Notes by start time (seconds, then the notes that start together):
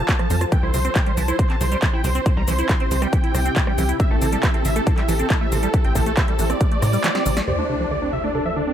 Already playing: F3 F4 A4 C5 A5
0.09 A3, kick, clap, closed hi-hat, shaker
0.19 F3, cross-stick, closed hi-hat
0.30 F2 F3, open hi-hat, shaker
0.41 F4, cross-stick, closed hi-hat, shaker
0.52 C3 E3 C4 E4 G4 G5, kick, closed hi-hat, shaker
0.63 C2 E4 C5
0.74 C2 C3 C5, open hi-hat, shaker
0.85 C4 C5, closed hi-hat, shaker
0.95 C3 G5, kick, clap, closed hi-hat, shaker
1.06 G3 C5, closed hi-hat
1.17 C2 E3 A5, open hi-hat, shaker
1.28 E4 C5, closed hi-hat, shaker
1.39 C3 C5, kick, closed hi-hat, shaker
1.50 C4 A5, clap, closed hi-hat
1.61 C2 C3 C5, open hi-hat, shaker
1.72 G3 C5, closed hi-hat, shaker
1.82 E3 C5, kick, clap, closed hi-hat, shaker
1.93 E4 G5
2.04 C2 C3 C5, open hi-hat, shaker
2.15 C4 C5, closed hi-hat, shaker
2.26 C3 C5, kick, closed hi-hat, shaker
2.37 C2 G3 A#5
2.48 C2 E3 C5, open hi-hat, shaker
2.58 E4 C5, closed hi-hat, shaker
2.69 C3 C6, kick, clap, closed hi-hat, shaker
2.80 C4 C5, closed hi-hat
2.91 C2 C3 C5, open hi-hat, shaker
3.02 G3 G5, cross-stick, closed hi-hat, shaker
3.13 E3, kick, closed hi-hat, shaker
3.24 E4, closed hi-hat
3.35 C2 C3, cross-stick, open hi-hat, shaker
3.45 C4, closed hi-hat, shaker
3.56 C3, kick, clap, closed hi-hat, shaker
3.67 G3, cross-stick
3.78 C2 E3, open hi-hat, shaker
3.89 E4, closed hi-hat, shaker
4.00 C3 A3 C5 E5, kick, closed hi-hat, shaker
4.11 A1 A3 A4
4.21 A1 C3 A4, open hi-hat, shaker
4.32 G3 A4, closed hi-hat, shaker
4.43 E3 E5, kick, clap, closed hi-hat, shaker
4.54 C4 A4, closed hi-hat
4.65 A1 C3 E5, open hi-hat, shaker
4.76 A3 A4, closed hi-hat, shaker
4.87 C3 A4, kick, closed hi-hat, shaker
4.98 G3 E5, clap, closed hi-hat
5.08 A1 E3 A4, open hi-hat, shaker
5.19 C4 A4, closed hi-hat, shaker
5.30 C3 A4, kick, clap, closed hi-hat, shaker
5.41 A3 E5
5.52 A1 C3 A4, open hi-hat, shaker
5.63 G3 A4, closed hi-hat, shaker
5.74 E3 A4, kick, closed hi-hat, shaker
5.84 A1 C4 G5, closed hi-hat
5.95 A1 C3 A4, kick, open hi-hat, shaker
6.06 A3 A4, closed hi-hat, shaker
6.17 C3 E5, kick, clap, closed hi-hat, shaker
6.28 G3 A4, closed hi-hat
6.39 A1 E3 A4, open hi-hat, shaker
6.50 C4 D5, cross-stick, closed hi-hat, shaker
6.61 C3, kick, closed hi-hat, shaker
6.71 A3, closed hi-hat
6.82 A2 C3, cross-stick, open hi-hat, shaker
6.93 G3, open hi-hat, shaker
7.04 E3, snare, clap, closed hi-hat, shaker
7.15 C4, snare, closed hi-hat
7.26 A1 C3, open hi-hat, shaker
7.37 A3, snare, closed hi-hat, shaker
7.48 D2 C3 D3 A3 C4 F4 C5 D5, sub drop
7.58 A3 D4
7.69 C3 D4
7.80 F3 D4
7.91 D3 D5
8.02 C4 D4
8.13 C3 E5
8.24 A3 D4
8.35 C3 D4 A4
8.45 F3 E5
8.56 D3 D4
8.67 C4 D4